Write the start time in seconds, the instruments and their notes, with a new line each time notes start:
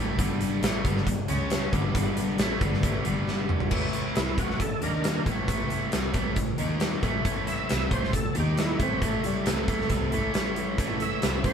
Already playing: double bass A1, overdriven electric guitar A2 E3 A3
0.18 double bass G1, overdriven electric guitar G2 D3 G3, string machine D4 G4 D5, kick, closed hi-hat
0.41 closed hi-hat
0.62 double bass A1, overdriven electric guitar A2 E3 A3, snare, closed hi-hat
0.84 double bass G1, overdriven electric guitar G2 D3 G3, kick, closed hi-hat
0.97 snare
1.06 double bass G1, overdriven electric guitar G2 D3, kick, closed hi-hat
1.28 double bass C#2, overdriven electric guitar C#3 G#3 C#4, string machine C#4 G#4 C#5, closed hi-hat
1.50 snare, closed hi-hat
1.73 double bass G1, overdriven electric guitar G2 D3 G3, string machine D4 G4 D5, kick, closed hi-hat
1.94 double bass G1, overdriven electric guitar G2 D3 G3, kick, closed hi-hat
2.17 closed hi-hat
2.38 double bass A1, overdriven electric guitar A2 E3 A3, snare, closed hi-hat
2.60 double bass G1, overdriven electric guitar G2 D3 G3, kick, closed hi-hat
2.73 snare
2.82 double bass A1, overdriven electric guitar A2 E3 A3, kick, closed hi-hat
3.04 double bass G1, overdriven electric guitar G2 D3 G3, closed hi-hat
3.28 snare
3.49 mid tom
3.60 floor tom
3.70 double bass A1, twelve-string acoustic guitar A2 E3 A3 C#4 E4, overdriven electric guitar A2 E3 A3, kick, crash
3.93 twelve-string acoustic guitar A3 C#4 E4, closed hi-hat
4.14 double bass C2, overdriven electric guitar C3 G3 C4, twelve-string acoustic guitar E3 A3 C#4 E4, tonewheel organ E4, snare, closed hi-hat
4.37 double bass A1, overdriven electric guitar A2 E3 A3, twelve-string acoustic guitar A3 C#4 E4, tonewheel organ F#4, kick, closed hi-hat
4.50 snare
4.59 double bass A1, overdriven electric guitar A2 E3, tonewheel organ A4, kick, closed hi-hat
4.80 double bass D#2, overdriven electric guitar D#3 A#3 D#4, twelve-string acoustic guitar A#3 D#4 A#4, tonewheel organ D4 A#4, closed hi-hat
5.02 twelve-string acoustic guitar D#3 A#3 D#4 A#4, snare, closed hi-hat
5.25 double bass A1, overdriven electric guitar A2 E3 A3, twelve-string acoustic guitar A2 A3 C#4 E4 A4, kick, closed hi-hat
5.48 double bass A1, overdriven electric guitar A2 E3 A3, kick, closed hi-hat
5.69 twelve-string acoustic guitar C#4 E4 A4, closed hi-hat
5.92 double bass C2, overdriven electric guitar C3 G3 C4, twelve-string acoustic guitar A3 C#4 E4 A4, snare, closed hi-hat
6.13 double bass A1, overdriven electric guitar A2 E3 A3, twelve-string acoustic guitar C#4 E4 A4, kick, closed hi-hat
6.36 double bass A1, overdriven electric guitar A2 E3, kick, closed hi-hat
6.57 double bass D#2, overdriven electric guitar D#3 A#3 D#4, twelve-string acoustic guitar A#3 D#4 A#4, closed hi-hat
6.79 twelve-string acoustic guitar D#3 A#3 D#4 A#4, snare, closed hi-hat
7.02 double bass A1, overdriven electric guitar A2 E3 A3, twelve-string acoustic guitar A2 A3 C#4 E4 A4, kick, closed hi-hat
7.25 double bass A1, overdriven electric guitar A2 E3 A3, kick, closed hi-hat
7.46 twelve-string acoustic guitar C#4 E4 A4, tonewheel organ E5, closed hi-hat
7.68 double bass C2, overdriven electric guitar C3 G3 C4, twelve-string acoustic guitar A3 C#4 E4 A4, snare, closed hi-hat
7.90 double bass A1, overdriven electric guitar A2 E3 A3, twelve-string acoustic guitar C#4 E4 A4, tonewheel organ C5, kick, closed hi-hat
8.04 snare
8.13 double bass A1, overdriven electric guitar A2 E3, tonewheel organ A4, kick, closed hi-hat
8.35 double bass D#2, overdriven electric guitar D#3 A#3 D#4, twelve-string acoustic guitar A#3 D#4 A#4, closed hi-hat
8.40 tonewheel organ G4
8.57 twelve-string acoustic guitar D#3 A#3 D#4 A#4, tonewheel organ E4, snare, closed hi-hat
8.79 double bass A1, overdriven electric guitar A2 E3 A3, twelve-string acoustic guitar A2 A3 C#4 E4 A4, tonewheel organ C4, kick, closed hi-hat
9.01 double bass A1, overdriven electric guitar A2 E3 A3, tonewheel organ A3, kick, closed hi-hat
9.23 tonewheel organ G3, twelve-string acoustic guitar C#4 E4 A4, closed hi-hat
9.45 double bass C2, overdriven electric guitar C3 G3 C4, twelve-string acoustic guitar A3 C#4 E4 A4, tonewheel organ A3, snare, closed hi-hat
9.67 double bass A1, overdriven electric guitar A2 E3 A3, twelve-string acoustic guitar C#4 E4 A4, kick, closed hi-hat
9.80 snare
9.89 double bass C2, overdriven electric guitar C3 G3 C4, kick, closed hi-hat
10.11 double bass A1, overdriven electric guitar A2 E3 A3, twelve-string acoustic guitar C#4 E4 A4, closed hi-hat
10.34 twelve-string acoustic guitar A3 C#4 E4 A4, snare, closed hi-hat
10.56 closed hi-hat
10.78 double bass A1, twelve-string acoustic guitar A2 A3 C#4 E4 A4, overdriven electric guitar A2 E3 A3, string machine A3 C#4 E4 C#5, kick, closed hi-hat
10.99 twelve-string acoustic guitar C#4 E4 A4, tonewheel organ E5, closed hi-hat
11.22 double bass C2, overdriven electric guitar C3 G3 C4, twelve-string acoustic guitar A3 C#4 E4 A4, snare, closed hi-hat
11.44 double bass A1, overdriven electric guitar A2 E3 A3, twelve-string acoustic guitar C#4 E4 A4, tonewheel organ C5, kick, closed hi-hat